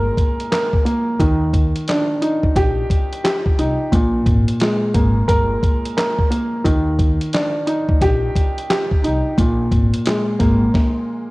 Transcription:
Already playing: A#2 G#3 A#3 A#4
0.17 kick, closed hi-hat
0.40 closed hi-hat
0.52 A#4, snare, clap, closed hi-hat
0.73 kick
0.85 A#3, closed hi-hat
1.19 D#2 D#3, kick, closed hi-hat
1.53 kick, closed hi-hat
1.76 closed hi-hat
1.88 D4, snare, clap, closed hi-hat
2.22 D#4, closed hi-hat
2.43 D2, kick
2.56 A#1 G4, kick, snare, closed hi-hat
2.90 kick, closed hi-hat
3.13 closed hi-hat
3.24 G4, snare, clap, closed hi-hat
3.46 kick
3.58 C2 D#4, closed hi-hat
3.92 A#1 A#2, kick, closed hi-hat
4.26 G#1, kick, closed hi-hat
4.48 closed hi-hat
4.60 G#3, snare, clap, closed hi-hat
4.94 G#1 A#3, kick, closed hi-hat
5.28 G1 A#4, kick, closed hi-hat
5.63 kick, closed hi-hat
5.85 closed hi-hat
5.97 A#4, snare, clap, closed hi-hat
6.19 kick
6.30 A#3, closed hi-hat
6.64 D#2 D#3, kick, closed hi-hat
6.99 kick, closed hi-hat
7.21 closed hi-hat
7.33 D4, snare, clap, closed hi-hat
7.67 D#4, closed hi-hat
7.89 D2, kick
8.01 A#1 G4, kick, snare, closed hi-hat
8.36 kick, closed hi-hat
8.58 closed hi-hat
8.70 G4, snare, clap, closed hi-hat
8.91 kick
9.04 C2 D#4, closed hi-hat
9.38 A#1 A#2, kick, closed hi-hat
9.72 G#1, kick, closed hi-hat
9.94 closed hi-hat
10.06 G#3, snare, clap, closed hi-hat
10.39 G#1 A#3, kick, snare, closed hi-hat
10.74 kick, snare

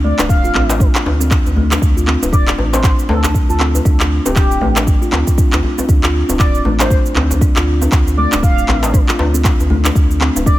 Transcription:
Already playing: D2
0.04 A3 D5
0.19 D1 D4, clap, djembe tone, cabasa
0.29 F5, kick, cabasa
0.44 F4, cabasa
0.55 A1 C4, clap, djembe tone, djembe bass
0.69 djembe slap, cabasa
0.80 D4, kick, cabasa
0.95 clap, cabasa
1.06 D2, djembe slap, djembe tone
1.20 C4, cabasa
1.31 D4, kick, clap, cabasa
1.46 D2, djembe tone, cabasa
1.56 A3, djembe bass
1.71 D4, clap, djembe tone, cabasa
1.82 D2, kick, cabasa
1.97 F4, cabasa
2.07 C4, clap
2.22 D1, djembe tone, cabasa
2.33 D4 D5, kick, cabasa
2.48 clap, cabasa
2.58 A1, djembe tone
2.73 C4 C5, djembe slap, cabasa
2.84 D4, kick, clap, cabasa
2.99 cabasa
3.09 D2 A3 A4, djembe slap, djembe tone, djembe bass
3.24 D4, clap, djembe tone, djembe bass, cabasa
3.34 kick, cabasa
3.49 D2 F4 A4, cabasa
3.60 C4, clap
3.75 djembe tone, cabasa
3.85 D2 D4, kick, cabasa
4.00 clap, cabasa
4.25 D1 C4 G4, djembe tone, cabasa
4.36 D4, kick, clap, cabasa
4.51 cabasa
4.61 A1 A3, djembe tone, djembe bass
4.76 D4, clap, djembe slap, cabasa
4.87 kick, cabasa
5.02 F4, cabasa
5.12 D2 C4, clap, djembe slap, djembe tone
5.27 kick, cabasa
5.38 D4, kick, cabasa
5.53 D2, clap, djembe tone, cabasa
5.63 djembe bass
5.78 C4, djembe tone, cabasa
5.89 D2 D4, kick, cabasa
6.04 F4, clap, cabasa
6.29 D1 C4, djembe tone, cabasa
6.39 D4 D5, kick, clap, cabasa
6.55 cabasa
6.65 A1 A3, djembe tone
6.80 D4 C5, clap, djembe slap, cabasa
6.90 kick, cabasa
7.06 cabasa
7.15 D2 C4, clap, djembe slap, djembe tone, djembe bass
7.31 djembe tone, djembe bass, cabasa
7.41 D4, kick, cabasa
7.56 D2 F4, clap, cabasa
7.81 C4, djembe tone, cabasa
7.92 D2 D4, kick, clap, cabasa
8.07 cabasa
8.17 A3 D5
8.32 D1 D4, clap, djembe tone, cabasa
8.43 F5, kick, cabasa
8.58 cabasa
8.68 A1 C4, clap, djembe tone, djembe bass
8.83 djembe slap, cabasa
8.94 D4, kick, cabasa
9.09 F4, clap, cabasa
9.19 D2, djembe slap, djembe tone
9.34 C4, cabasa
9.45 D4, kick, clap, cabasa
9.60 D2, djembe tone, cabasa
9.70 A3, djembe bass
9.85 D4, clap, djembe tone, cabasa
9.95 D2, kick, cabasa
10.11 cabasa
10.21 C4, clap
10.36 D1, djembe tone, cabasa
10.46 D4 D5, kick, cabasa

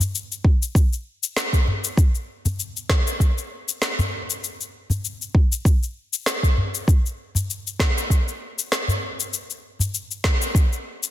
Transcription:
0.00 udu, shaker
0.15 shaker
0.32 shaker
0.45 kick
0.63 shaker
0.75 kick, shaker
0.93 shaker
1.23 shaker
1.37 snare, shaker
1.53 kick, shaker
1.68 udu
1.84 shaker
1.97 kick, shaker
2.15 shaker
2.45 udu, shaker
2.60 shaker
2.77 shaker
2.89 kick, snare
3.07 shaker
3.20 kick, shaker
3.38 shaker
3.69 shaker
3.82 snare, shaker
3.99 udu, shaker
4.30 shaker
4.44 shaker
4.61 shaker
4.90 udu, shaker
5.05 shaker
5.22 shaker
5.35 kick
5.52 shaker
5.65 kick, shaker
5.83 shaker
6.13 shaker
6.26 snare, shaker
6.43 kick, shaker
6.57 udu
6.75 shaker
6.88 kick, shaker
7.06 shaker
7.35 udu, shaker
7.50 shaker
7.67 shaker
7.80 kick, snare
7.98 shaker
8.10 kick, shaker
8.28 shaker
8.59 shaker
8.72 snare, shaker
8.88 udu, shaker
9.20 shaker
9.34 shaker
9.50 shaker
9.79 udu, shaker
9.94 shaker
10.11 shaker
10.24 kick, snare
10.42 shaker
10.55 kick, shaker
10.73 shaker
11.03 shaker

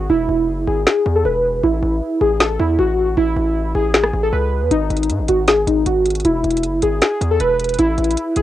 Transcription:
0.09 E1 E4
0.29 E1
0.48 F#1
0.67 G#1 G#4
0.87 G#4, snare
1.06 E2
1.15 A4
1.25 E1 B4
1.63 A1 E4
1.83 A1
2.21 A1 G#4
2.40 A4, snare
2.60 E2 E4
2.79 A1 F#4
3.17 A1 E4
3.36 A1
3.75 A1 G#4
3.94 G#4, snare
4.04 cross-stick
4.13 A1
4.23 A4
4.33 C#2 B4
4.61 E2
4.71 G#1 D#4, closed hi-hat
4.90 G#1, closed hi-hat
4.97 closed hi-hat
5.03 closed hi-hat
5.09 G#2, closed hi-hat
5.19 G#1
5.28 G#1 F#4, closed hi-hat
5.48 G#4, snare, closed hi-hat
5.67 G#1 D#4, closed hi-hat
5.86 G#1 F#4, closed hi-hat
6.06 closed hi-hat, open hi-hat
6.10 closed hi-hat
6.15 closed hi-hat
6.20 closed hi-hat
6.25 E1 E4, closed hi-hat
6.44 E1, closed hi-hat
6.51 closed hi-hat
6.57 closed hi-hat
6.63 F#1, closed hi-hat
6.82 G#1 G#4, closed hi-hat
7.02 G#4, snare, closed hi-hat
7.21 E2, closed hi-hat
7.31 A4
7.40 E1 B4, closed hi-hat
7.60 closed hi-hat
7.64 closed hi-hat
7.69 closed hi-hat
7.74 closed hi-hat
7.79 A1 E4, closed hi-hat
7.98 A1, closed hi-hat
8.04 closed hi-hat
8.11 closed hi-hat
8.17 closed hi-hat
8.36 A1 G#4, closed hi-hat

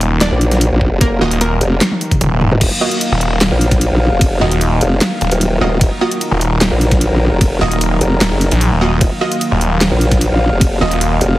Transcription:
Already playing: D#1 D#3 F#3 A#3 D#4 D#5
0.01 closed hi-hat
0.21 D4 D5, snare, clap, closed hi-hat
0.31 A#1
0.41 closed hi-hat
0.51 snare, closed hi-hat
0.61 closed hi-hat
0.72 A#1
0.81 kick
0.91 F1
1.01 A#3 A#4, kick, closed hi-hat
1.21 D#1 A#3 F4 F#4 D#5
1.31 closed hi-hat
1.41 A#3 A#4, closed hi-hat
1.61 F1, closed hi-hat
1.81 snare, clap, closed hi-hat, high tom
1.91 high tom
2.01 closed hi-hat
2.11 kick, closed hi-hat, mid tom
2.21 D#1, closed hi-hat, mid tom
2.31 D#1
2.41 mid tom
2.51 D#1, mid tom
2.61 D#1 D#3 F#3 A#3 F5, kick, closed hi-hat, crash, ride
2.81 A#3 F4 F#4 D#5
2.91 closed hi-hat
3.01 closed hi-hat, ride
3.11 D#1
3.21 closed hi-hat
3.41 snare, clap, closed hi-hat, ride
3.52 A#1
3.61 closed hi-hat
3.71 kick, snare, closed hi-hat
3.81 closed hi-hat, ride
3.92 A#1
4.12 F1
4.21 kick, closed hi-hat, ride
4.41 D#1 A#3 F4 F#4 D#5
4.51 closed hi-hat
4.61 closed hi-hat, ride
4.81 F1, closed hi-hat
5.01 snare, clap, closed hi-hat, ride
5.21 D#1, closed hi-hat
5.31 D#1, closed hi-hat
5.41 closed hi-hat, ride
5.61 D#1 A#3 F4 F#4 D#5
5.81 D#1 A#4, kick, closed hi-hat, ride
6.01 A#3 F4 F#4 D#5
6.11 closed hi-hat
6.21 closed hi-hat, ride
6.31 D#1
6.41 closed hi-hat
6.61 snare, clap, closed hi-hat, ride
6.71 A#1
6.81 closed hi-hat
6.91 kick, snare, closed hi-hat
7.01 closed hi-hat, ride
7.11 A#1
7.31 F1
7.41 kick, closed hi-hat, ride
7.61 D#1 A#3 F4 F#4 D#5
7.71 closed hi-hat
7.81 closed hi-hat, ride
8.01 F1, closed hi-hat
8.21 D#1, snare, clap, closed hi-hat, ride
8.31 F#1
8.41 closed hi-hat
8.51 A#1, closed hi-hat
8.61 closed hi-hat, ride
8.71 D#1
8.81 A#3 F4 F#4 D#5
9.01 D#1 F5, kick, closed hi-hat, ride
9.21 A#3 F4 F#4 D#5
9.32 closed hi-hat
9.41 closed hi-hat, ride
9.51 D#1
9.61 closed hi-hat
9.81 snare, clap, closed hi-hat, ride
9.91 A#1
10.01 closed hi-hat
10.11 kick, snare, closed hi-hat
10.21 closed hi-hat, ride
10.31 A#1
10.52 F1
10.61 kick, closed hi-hat, ride
10.81 D#1 A#3 F4 F#4 D#5
10.91 closed hi-hat
11.01 closed hi-hat, ride
11.21 F1, closed hi-hat

